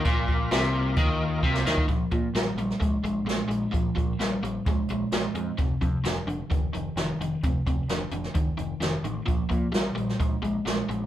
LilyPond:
<<
  \new Staff \with { instrumentName = "Tonewheel organ" } { \time 4/4 \key bes \major \tempo 4 = 130 <bes f' bes'>1 | \key bes \lydian r1 | r1 | r1 |
r1 | r1 | }
  \new Staff \with { instrumentName = "Overdriven electric guitar" } { \clef bass \time 4/4 \key bes \major bes,4 c4 ees4 c8 ees8 | \key bes \lydian <bes, f>8 <bes, f>8 <bes, g>8 <bes, g>8 <bes, aes>8 <bes, aes>8 <bes, aes>8 <bes, aes>8 | <bes, f>8 <bes, f>8 <bes, g>8 <bes, g>8 <bes, aes>8 <bes, aes>8 <bes, aes>8 <bes, aes>8 | <f, c>8 <f, c>8 <f, d>8 <f, d>8 <f, ees>8 <f, ees>8 <f, ees>8 <f, ees>8 |
<f, c>8 <f, c>8 <f, d>8 <f, d>8 <f, ees>8 <f, ees>8 <f, ees>8 <f, ees>8 | <bes, f>8 <bes, f>8 <bes, g>8 <bes, g>8 <bes, aes>8 <bes, aes>8 <bes, aes>8 <bes, aes>8 | }
  \new Staff \with { instrumentName = "Picked electric bass" } { \clef bass \time 4/4 \key bes \major bes,,4 c,4 ees,4 c,8 ees,8 | \key bes \lydian bes,,8 bes,8 bes,,8 bes,,8 bes,,8 bes,,8 bes,,8 bes,,8 | bes,,8 bes,,8 bes,,8 bes,,8 bes,,8 bes,,8 bes,,8 f,8 | f,,8 f,8 f,,8 f,,8 f,,8 f,,8 f,,8 f,,8 |
f,,8 f,,8 f,,8 f,,8 f,,8 f,,8 f,,8 a,,8 | bes,,8 bes,8 bes,,8 bes,,8 bes,,8 bes,,8 bes,,8 bes,,8 | }
  \new DrumStaff \with { instrumentName = "Drums" } \drummode { \time 4/4 <hh bd>8 bd8 <hh sn>4 <hh bd>4 bd16 sn16 sn16 bd16 | <hh bd>8 <hh bd>8 <hh sn>8 hh16 sn16 <hh bd>8 hh8 <hh sn>8 hh8 | <hh bd>8 <hh bd>8 <hh sn>8 hh8 <hh bd>8 hh8 <hh sn>8 hh8 | <hh bd>8 <hh bd>8 <hh sn>8 hh8 <hh bd>8 hh8 <hh sn>8 hh8 |
<hh bd>8 <hh bd>8 <hh sn>8 hh16 sn16 <hh bd>8 hh8 <hh sn>8 hh8 | <hh bd>8 <hh bd>8 <hh sn>8 hh16 sn16 <hh bd>8 hh8 <hh sn>8 hh8 | }
>>